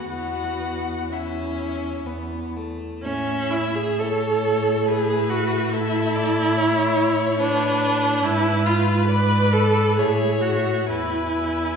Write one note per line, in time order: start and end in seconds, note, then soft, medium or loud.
0.00 0.11 B3 medium
0.00 0.11 F#4 medium
0.08 2.04 E2 medium
0.08 1.11 B3 medium
0.08 1.15 F#4 medium
0.08 1.14 F#5 medium
1.11 2.08 C#4 medium
1.11 2.09 E4 medium
1.11 2.08 E5 medium
2.07 2.81 E2 medium
2.07 2.58 B3 medium
2.56 3.04 A3 medium
3.03 8.19 A2 medium
3.03 3.52 C#4 loud
3.03 4.01 E5 medium
3.51 3.77 E4 loud
3.75 4.01 G#4 loud
3.99 4.90 A4 loud
3.99 4.89 C#5 medium
4.87 5.31 G#4 loud
4.87 5.75 B4 medium
4.87 5.71 E5 medium
5.29 5.75 F#4 loud
5.71 7.40 E4 loud
5.71 6.58 A4 medium
5.71 6.17 E5 loud
6.16 6.58 D5 medium
6.56 8.26 C#5 loud
6.56 7.42 C#5 medium
7.40 8.25 D4 loud
7.40 8.24 B4 medium
8.22 9.98 G#2 loud
8.22 8.68 E4 loud
8.22 9.10 B4 loud
8.22 10.01 B4 medium
8.66 9.07 F4 loud
9.08 9.54 B4 loud
9.08 9.97 D5 medium
9.53 9.98 A4 loud
9.96 10.89 A2 medium
9.96 10.43 G#4 loud
9.96 10.89 C#5 medium
9.96 10.87 E5 medium
10.41 10.88 F#4 medium
10.88 11.76 E2 medium
10.88 11.76 E4 loud
10.88 11.76 B4 medium
10.88 11.76 G#5 medium